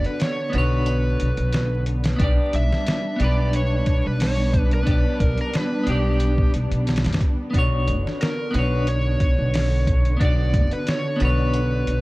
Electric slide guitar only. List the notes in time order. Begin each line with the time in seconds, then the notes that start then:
0.06 B4
0.22 C#5
0.55 B4
2.56 E5
3.22 D5
3.56 C#5
4.07 B4
4.23 C#5
4.74 B4
5.21 A#4
5.41 A#4
5.57 B4
5.90 G4
8.22 A#4
8.56 B4
8.89 C#5
10.21 D5
10.73 B4
10.89 C#5
11.23 B4